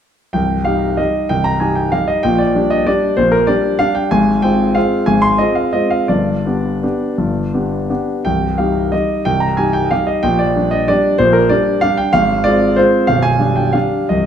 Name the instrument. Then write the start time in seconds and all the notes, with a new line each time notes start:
grand piano
0.33 C1 C2 G5
0.65 G3 D#4 G4 F5
0.97 G3 D#4 G4 D#5
1.29 C1 C2 G5
1.44 A#5
1.60 G3 D#4 G4 G#5
1.75 G5
1.92 G3 D#4 G4 F5
2.08 D#5
2.23 A#1 A#2 G5
2.38 D5
2.55 G3 D4 G4
2.70 D#5
2.87 G3 D4 G4 D5
3.17 A#1 A#2 C5
3.32 A#4
3.47 G3 D4 G4 D5
3.79 G3 D4 G4 F5
3.95 G5
4.11 G#1 G#2 G#5
4.42 G#3 C4 F4 G5
4.75 G#3 C4 F4 F5
5.06 G#1 G#2 G#5
5.22 C6
5.38 G#3 C4 F4 D#5
5.55 F5
5.73 G#3 C4 F4 D#5
5.90 F5
6.08 G1 G2 D5
6.46 B3 D4 G4
6.83 B3 D4 G4
7.18 G1 G2
7.54 B3 D4 G4
7.90 B3 D4 G4
8.25 C1 C2 G5
8.58 G3 D#4 G4 F5
8.92 G3 D#4 G4 D#5
9.25 C1 C2 G5
9.40 A#5
9.57 G3 D#4 G4 G#5
9.73 G5
9.91 G3 D#4 G4 F5
10.07 D#5
10.23 A#1 A#2 G5
10.39 D5
10.56 G3 D4 G4
10.71 D#5
10.88 G3 D4 G4 D5
11.18 A#1 A#2 C5
11.33 A#4
11.49 G3 D4 G4 D5
11.81 G3 D4 G4 F5
11.97 G5
12.13 G#1 G#2 F5
12.44 G#3 C4 F4 D5
12.76 G#3 C4 F4 C5
13.07 B0 B1 F5
13.22 G#5
13.39 G3 D4 G4
13.56 G5
13.73 G3 D4 G4 F5
14.09 C1 C2 D#5